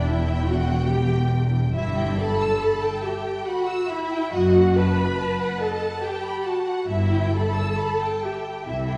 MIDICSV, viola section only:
0, 0, Header, 1, 2, 480
1, 0, Start_track
1, 0, Key_signature, 1, "minor"
1, 0, Tempo, 818554
1, 517, Tempo, 854701
1, 996, Time_signature, 3, 2, 24, 8
1, 3397, Tempo, 884956
1, 5005, End_track
2, 0, Start_track
2, 0, Title_t, "Viola section"
2, 0, Program_c, 0, 48
2, 42, Note_on_c, 0, 64, 72
2, 280, Note_off_c, 0, 64, 0
2, 280, Note_on_c, 0, 66, 67
2, 512, Note_on_c, 0, 67, 68
2, 518, Note_off_c, 0, 66, 0
2, 748, Note_off_c, 0, 67, 0
2, 998, Note_on_c, 0, 64, 82
2, 1229, Note_off_c, 0, 64, 0
2, 1246, Note_on_c, 0, 69, 81
2, 1713, Note_off_c, 0, 69, 0
2, 1729, Note_on_c, 0, 67, 62
2, 1964, Note_off_c, 0, 67, 0
2, 1965, Note_on_c, 0, 66, 74
2, 2202, Note_off_c, 0, 66, 0
2, 2207, Note_on_c, 0, 64, 88
2, 2450, Note_off_c, 0, 64, 0
2, 2450, Note_on_c, 0, 66, 92
2, 2689, Note_off_c, 0, 66, 0
2, 2692, Note_on_c, 0, 71, 82
2, 3162, Note_off_c, 0, 71, 0
2, 3166, Note_on_c, 0, 69, 71
2, 3400, Note_off_c, 0, 69, 0
2, 3400, Note_on_c, 0, 67, 69
2, 3629, Note_off_c, 0, 67, 0
2, 3633, Note_on_c, 0, 66, 65
2, 3870, Note_off_c, 0, 66, 0
2, 3874, Note_on_c, 0, 64, 86
2, 4113, Note_off_c, 0, 64, 0
2, 4120, Note_on_c, 0, 69, 77
2, 4588, Note_off_c, 0, 69, 0
2, 4604, Note_on_c, 0, 67, 55
2, 4840, Note_off_c, 0, 67, 0
2, 4840, Note_on_c, 0, 64, 62
2, 5005, Note_off_c, 0, 64, 0
2, 5005, End_track
0, 0, End_of_file